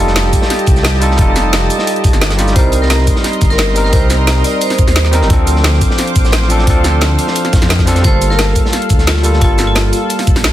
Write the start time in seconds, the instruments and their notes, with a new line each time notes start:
Already playing: detuned saw bass F1, tine electric piano G3 D#4 F4 A4, analog synth pad G4 D#5 A5
0.07 snare
0.16 snare, closed hi-hat
0.25 snare
0.33 kick, closed hi-hat, shaker
0.42 snare
0.50 snare, closed hi-hat
0.59 closed hi-hat
0.66 detuned saw bass C2, kick, closed hi-hat, shaker
0.76 snare, shaker
0.83 snare, closed hi-hat
0.93 snare
1.00 tine electric piano G3 D#4 F4 A4, closed hi-hat, shaker
1.11 snare
1.16 detuned saw bass F1, tine electric piano G3 D#4 F4, kick, closed hi-hat
1.22 tine electric piano A4
1.36 snare, closed hi-hat, shaker
1.53 snare, closed hi-hat
1.70 closed hi-hat, shaker
1.79 snare
1.87 closed hi-hat
1.96 closed hi-hat
2.04 kick, closed hi-hat, shaker
2.13 detuned saw bass G1, snare, shaker
2.21 snare, closed hi-hat
2.30 snare, shaker
2.37 tine electric piano G3 D#4 F4 G4, snare, closed hi-hat, shaker
2.47 snare, shaker
2.53 detuned saw bass C2, tine electric piano G3 C4 D#4, analog synth pad A#4 D#5 C6, vibraphone C5, kick, closed hi-hat
2.59 tine electric piano A#4
2.72 closed hi-hat, shaker
2.82 vibraphone A#4, snare
2.90 snare, closed hi-hat
2.99 snare
3.07 kick, closed hi-hat, shaker
3.16 snare
3.24 snare, closed hi-hat
3.33 closed hi-hat
3.41 detuned saw bass G1, kick, closed hi-hat, shaker
3.50 vibraphone A#4, snare, shaker
3.58 snare, closed hi-hat
3.67 snare
3.74 tine electric piano G3 C4 D#4 A#4, closed hi-hat, shaker
3.84 vibraphone A#4, snare
3.90 detuned saw bass C2, tine electric piano G3 C4 D#4, vibraphone C5, kick, closed hi-hat
3.96 tine electric piano A#4
4.10 snare, closed hi-hat, shaker
4.27 snare, closed hi-hat
4.44 vibraphone D5, closed hi-hat, shaker
4.61 vibraphone C5, closed hi-hat
4.70 snare, closed hi-hat
4.79 kick, closed hi-hat, shaker
4.87 detuned saw bass D#2, snare, closed hi-hat, shaker
4.96 snare, closed hi-hat
5.05 snare
5.11 tine electric piano G3 C4 D#4 A#4, snare, closed hi-hat, shaker
5.21 detuned saw bass G1, snare
5.27 detuned saw bass D2, tine electric piano F3 C4 D4, analog synth pad C5 F5 D6, kick, closed hi-hat
5.33 tine electric piano A4
5.47 closed hi-hat, shaker
5.56 snare
5.64 snare, closed hi-hat
5.73 snare
5.81 kick, closed hi-hat, shaker
5.91 snare
5.98 snare, closed hi-hat
6.07 closed hi-hat
6.16 detuned saw bass A1, kick, closed hi-hat, shaker
6.25 snare, shaker
6.32 snare, closed hi-hat
6.42 snare
6.49 tine electric piano F3 C4 D4 A4, closed hi-hat, shaker
6.59 snare
6.64 detuned saw bass D2, tine electric piano F3 C4, kick, closed hi-hat
6.68 tine electric piano D4 A4
6.84 snare, closed hi-hat, shaker
7.01 snare, closed hi-hat
7.19 closed hi-hat, shaker
7.27 snare
7.35 closed hi-hat
7.45 snare, closed hi-hat
7.53 kick, snare, closed hi-hat, shaker
7.62 detuned saw bass F2, snare, closed hi-hat, shaker
7.69 snare, closed hi-hat
7.79 kick, snare, shaker
7.86 tine electric piano F3 C4 D4 A4, snare, closed hi-hat, shaker
7.96 snare, closed hi-hat, shaker
8.01 detuned saw bass G1, tine electric piano G3 A#3 F4, analog synth pad A4, vibraphone C5, kick, closed hi-hat
8.07 tine electric piano A4
8.22 closed hi-hat, shaker
8.30 vibraphone A#4, snare
8.38 snare, closed hi-hat
8.47 snare
8.55 kick, closed hi-hat, shaker
8.65 snare
8.73 snare, closed hi-hat
8.82 closed hi-hat
8.89 detuned saw bass D2, kick, closed hi-hat, shaker
8.99 snare, shaker
9.07 vibraphone F4, snare, closed hi-hat
9.16 snare
9.23 tine electric piano G3 A#3 F4 A4, closed hi-hat, shaker
9.33 snare
9.39 detuned saw bass G1, tine electric piano G3 A#3, vibraphone F4, kick, closed hi-hat
9.43 tine electric piano F4 A4
9.58 snare, closed hi-hat, shaker
9.67 vibraphone F4
9.75 snare, closed hi-hat
9.93 closed hi-hat, shaker
10.10 closed hi-hat
10.19 snare, closed hi-hat
10.27 kick, closed hi-hat, shaker
10.36 detuned saw bass A#1, snare, closed hi-hat, shaker
10.44 snare, closed hi-hat